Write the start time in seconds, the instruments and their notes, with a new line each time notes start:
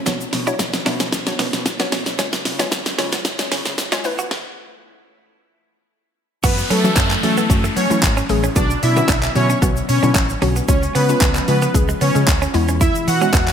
Already playing: string machine F#3 C#4
0.06 fretless electric bass B1, synth pluck B3 D4 F#4 C#5, clean electric guitar B3, string machine B3 D4, kick, snare, closed hi-hat, shaker
0.21 shaker
0.33 fretless electric bass B2, muted clean electric guitar stroke, snare, open hi-hat, shaker
0.47 synth pluck B3 D4 F#4 C#5, clean electric guitar E4, shaker
0.59 fretless electric bass B1, muted clean electric guitar stroke, kick, snare, closed hi-hat, shaker
0.74 snare, shaker
0.86 fretless electric bass B2, synth pluck B3 D4 F#4 E5, clean electric guitar D4, snare, open hi-hat, shaker
1.00 clean electric guitar C#4, snare, shaker
1.13 fretless electric bass B1, kick, snare, closed hi-hat, shaker
1.26 synth pluck B3 D4 F#4 C#5, snare, shaker
1.39 fretless electric bass B2, clean electric guitar B3, snare, open hi-hat, shaker
1.53 fretless electric bass B2, snare, shaker
1.66 fretless electric bass B1, muted clean electric guitar stroke, kick, snare, closed hi-hat, shaker
1.80 synth pluck B3 D4 F#4 C#5, clean electric guitar B3, snare, shaker
1.92 fretless electric bass B1, clean electric guitar C#4, snare, open hi-hat, shaker
2.06 snare, shaker
2.19 fretless electric bass C#2, string machine F3 G#3 F4, synth pluck G#3 C#4 F4 C#5, clean electric guitar C#4, kick, snare, closed hi-hat, shaker
2.33 snare, shaker
2.45 fretless electric bass C#3, muted clean electric guitar stroke, snare, open hi-hat, shaker
2.59 synth pluck G#3 C#4 F4 C#5, clean electric guitar B3, snare, shaker
2.72 fretless electric bass C#2, muted clean electric guitar stroke, kick, snare, closed hi-hat, shaker
2.86 snare, shaker
2.98 fretless electric bass C#3, synth pluck G#3 C#4 F4 C#5, clean electric guitar C#4, snare, open hi-hat, shaker
3.12 clean electric guitar B3, snare, shaker
3.25 fretless electric bass C#2, kick, snare, closed hi-hat, shaker
3.39 synth pluck G#3 C#4 F4 C#5, snare, shaker
3.51 fretless electric bass C#3, clean electric guitar C#4, snare, open hi-hat, shaker
3.65 fretless electric bass C#3, snare, shaker
3.78 fretless electric bass C#2, snare, closed hi-hat, shaker
3.92 synth pluck G#3 C#4 F4 C#5, clean electric guitar C#4, snare, shaker
4.04 fretless electric bass E2, string machine B2 E3 A3 E4, synth pluck A3 B3 E4 B4, muted clean electric guitar stroke, open hi-hat, shaker
4.18 clean electric guitar F#4, shaker
4.31 kick, snare
6.43 fretless electric bass F#2, synth pluck E3 F#3 A3 C#4 F#4, string machine F#3 A3 C#4 E4, supersaw synth B3 B4, clean electric guitar F#4, kick, closed hi-hat, crash, downlifter, shaker
6.58 muted clean electric guitar stroke, shaker
6.70 fretless electric bass F#3, supersaw synth A3 A4, clean electric guitar C#4, open hi-hat, shaker
6.84 synth pluck E3 F#3 A3 C#4 F#4, shaker
6.96 fretless electric bass F#2, clean electric guitar C#4, kick, clap, closed hi-hat, shaker
7.11 muted clean electric guitar stroke, clap, shaker
7.23 synth pluck E3 F#3 A3 C#4 F#4, fretless electric bass F#3, supersaw synth A3 A4, open hi-hat, shaker
7.37 clean electric guitar B3, shaker
7.50 fretless electric bass F#2, synth pluck E3 F#3 A3 C#4 F#4, muted clean electric guitar stroke, kick, closed hi-hat, shaker
7.64 clean electric guitar A3, shaker
7.76 fretless electric bass F#3, clean electric guitar B3, supersaw synth C#4 C#5, open hi-hat, shaker
7.90 synth pluck E3 F#3 A3 C#4 E4, fretless electric bass F#3, shaker
8.03 fretless electric bass G#1, kick, clap, closed hi-hat, shaker
8.17 clean electric guitar C#4, shaker
8.29 fretless electric bass A1, synth pluck E3 F#3 A3 C#4 G#4, muted clean electric guitar stroke, open hi-hat, shaker
8.43 clean electric guitar C#4, shaker
8.56 fretless electric bass B1, synth pluck D3 F#3 B3 C#4 F#4, string machine B3 D4, clean electric guitar B3, supersaw synth D4 D5, kick, closed hi-hat, shaker
8.70 shaker
8.83 fretless electric bass B2, supersaw synth E4 E5, muted clean electric guitar stroke, open hi-hat, shaker
8.96 synth pluck D3 F#3 B3 C#4 F#4, clean electric guitar B3, shaker
9.09 fretless electric bass B1, clean electric guitar D4, kick, clap, closed hi-hat, shaker
9.23 muted clean electric guitar stroke, clap, shaker
9.35 fretless electric bass B2, synth pluck D3 F#3 B3 C#4 F#4, supersaw synth C#4 C#5, open hi-hat, shaker
9.49 clean electric guitar C#4, shaker
9.62 fretless electric bass B1, synth pluck D3 F#3 B3 C#4 F#4, clean electric guitar B3, kick, closed hi-hat, shaker
9.76 shaker
9.89 fretless electric bass B2, supersaw synth C#4 C#5, muted clean electric guitar stroke, open hi-hat, shaker
10.03 fretless electric bass B2, synth pluck D3 F#3 B3 C#4 E4, clean electric guitar D4, shaker
10.15 fretless electric bass A1, muted clean electric guitar stroke, kick, clap, closed hi-hat, shaker
10.29 shaker
10.42 fretless electric bass B1, synth pluck D3 F#3 B3 C#4 F#4, clean electric guitar C#4, open hi-hat, shaker
10.56 clean electric guitar B3, shaker
10.68 fretless electric bass C#2, string machine F3 G#3 F4, synth pluck G#3 C#4 F4, clean electric guitar C#4, supersaw synth C#4 C#5, kick, closed hi-hat, shaker
10.83 muted clean electric guitar stroke, shaker
10.95 fretless electric bass C#3, clean electric guitar B3, supersaw synth B3 B4, open hi-hat, shaker
11.09 synth pluck G#3 C#4 F4, shaker
11.21 fretless electric bass C#2, clean electric guitar C#4, kick, clap, closed hi-hat, shaker
11.35 muted clean electric guitar stroke, clap, shaker
11.48 fretless electric bass C#3, synth pluck G#3 C#4 F4, supersaw synth B3 B4, open hi-hat, shaker
11.62 clean electric guitar B3, shaker
11.74 fretless electric bass C#2, synth pluck G#3 C#4 G#4, muted clean electric guitar stroke, kick, closed hi-hat, shaker
11.89 clean electric guitar G#3, shaker
12.01 fretless electric bass C#3, clean electric guitar B3, supersaw synth C#4 C#5, open hi-hat, shaker
12.15 fretless electric bass C#3, synth pluck G#3 C#4 G#4, shaker
12.28 fretless electric bass D2, kick, clap, closed hi-hat, shaker
12.42 clean electric guitar C#4, shaker
12.54 fretless electric bass E2, string machine B2 E3 E4, synth pluck G#3 B3 E4, muted clean electric guitar stroke, open hi-hat, shaker
12.68 clean electric guitar C#4, shaker
12.81 clean electric guitar E4, supersaw synth E4 E5, kick, closed hi-hat, shaker
12.95 shaker
13.07 fretless electric bass E3, supersaw synth F#4 F#5, muted clean electric guitar stroke, open hi-hat, shaker
13.21 synth pluck G#3 B3 F#4, clean electric guitar C#4, shaker
13.34 fretless electric bass E2, clean electric guitar B3, kick, clap, closed hi-hat, shaker
13.48 muted clean electric guitar stroke, clap, shaker